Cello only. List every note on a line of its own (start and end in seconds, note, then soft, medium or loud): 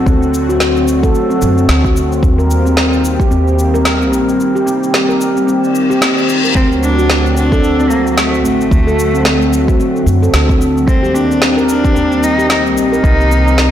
6.56 6.68 C4 loud
6.82 7.33 D4 loud
7.37 7.92 D4 loud
7.90 8.11 A#3 medium
8.12 8.19 A#3 medium
8.18 8.43 A3 medium
8.44 10.02 A3 medium
10.88 11.16 C4 loud
11.14 11.68 D4 medium
11.69 12.25 D4 loud
12.24 12.50 D#4 loud
12.51 12.63 D#4 loud
12.78 13.71 D#4 loud